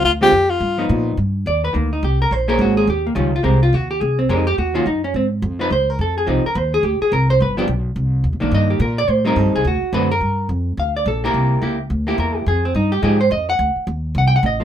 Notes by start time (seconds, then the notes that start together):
0.04 D2 F4
0.21 D3 G#3 C4 F4 G4
0.32 F2
0.50 F4
0.60 G2
0.78 F3 B3 D#4
0.89 A#2
1.17 G2
1.46 D#2 D5
1.65 B4
1.73 D2 D#3 A#3
1.93 D#4
2.03 C2 G4
2.22 A#4
2.31 A#1 C5
2.48 A#3 C#4 G#4 A#4 C5
2.59 G#1 F#4
2.77 G#4
2.87 D#2 G4
3.07 A#3
3.15 C#2 D#3 G3 C#4 F4
3.36 F4
3.43 C2 G#3 C4 G4 A#4
3.63 F4
3.73 D#2 F#4
3.91 G4
4.01 C2 G#4
4.19 C4
4.29 F2 G#3 C4 D#4 G4 A#4
4.47 G4
4.58 D#2 F#4
4.74 D#3 A#3 C#4 F4 F#4
4.86 F#2 D#4
5.04 C#4
5.14 G#2 C4
5.42 F2
5.59 F3 C4 D#4 B4
5.71 C#2 C5
5.90 A#4
5.99 F2 A4
6.18 G#4
6.27 C2 F3 C4 D#4 G4
6.45 A#4, muted upright bass stroke
6.55 D#2 C5
6.74 G#4
6.83 D2 G4
7.01 G#4, muted upright bass stroke
7.12 C2 A#4
7.30 C5
7.40 G1 B4
7.57 F3 B3 D4 G4
7.68 B1
7.96 C2
8.24 D#2
8.33 C2
8.40 A#1 D#3 A#3 D4
8.52 G2 D#5
8.70 G4
8.80 A#2 A#4
8.98 D5
9.08 A2 C5
9.25 G3 C4 D#4 A#4
9.36 G2 A4
9.46 D#2
9.55 C2 G#4
9.65 D2 F#4
9.82 muted upright bass stroke
9.93 F#2 D3 A3 C4 F#4 B4
10.12 A#4
10.21 G2
10.49 F2
10.77 D2 F5
10.96 D5
11.06 A#1 A4
11.24 A#3 E4 G4 A#4
11.34 C2
11.62 C#2 A#3 E4 G4
11.90 D2
12.07 A#3 E4 G4
12.18 E2 A#4
12.36 G4
12.46 F2 G#4
12.65 C4
12.75 G2 D#4
12.92 G4
13.02 G#2 F3 G#3 D#4 G4 G#4
13.21 C5
13.31 F2 D#5
13.50 F#5
13.59 D2
13.76 muted upright bass stroke
13.87 D#2
14.15 C2 F#5
14.28 G5
14.36 F#5
14.43 A1 D#5
14.60 F3